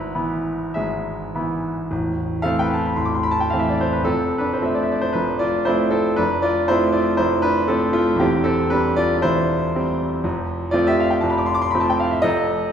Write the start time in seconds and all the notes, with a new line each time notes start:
Already playing: G#1 G#2 E4 B4
0.15 E3 B3 E4
0.74 G#1 G#2 G#4 E5
1.35 E3 B3 E4
1.91 A0 A1
2.42 E3 A3 C4 A4 F5
2.59 B4 G5
2.74 A5
2.86 B5
2.96 A0 A1 C6
3.05 D6
3.15 C6
3.23 B5
3.31 A5
3.40 G5
3.50 E3 A3 C4 F5
3.59 E5
3.70 D5
3.81 C5
3.93 B4
4.01 F1 A4
4.06 F2 C4
4.38 D4 B4
4.53 C5
4.62 F3 A3 C4 E5
4.75 D5
4.83 E5
4.92 D5
5.01 C5
5.13 F1 F2 D4 B4
5.39 F4 D5
5.65 F3 A3 C4 E4 C5
5.91 C4 A4
6.16 F1 F2 D4 B4
6.42 F4 D5
6.68 F3 A3 C4 E4 C5
6.92 F4 D5
7.17 F1 F2 E4 C5
7.42 D4 B4
7.68 F3 A3 C4 A4
7.93 A3 F4
8.16 E1 E2 G4
8.21 C4
8.44 C4 A4
8.70 G3 C4 D4 B4
8.96 F4 D5
9.18 D5
9.22 E1 E2 E4 C5
9.76 G3 C4
10.24 F1 F2
10.71 F3 A3 C4 F4 D5
10.87 G4 E5
11.00 F5
11.10 G5
11.21 F1 F2 A5
11.30 B5
11.38 D6
11.46 C6
11.54 D6
11.62 C6
11.71 F3 A3 B5
11.75 C4
11.80 A5
11.90 G5
12.00 F5
12.11 E5
12.22 F1 F2 A4 D#5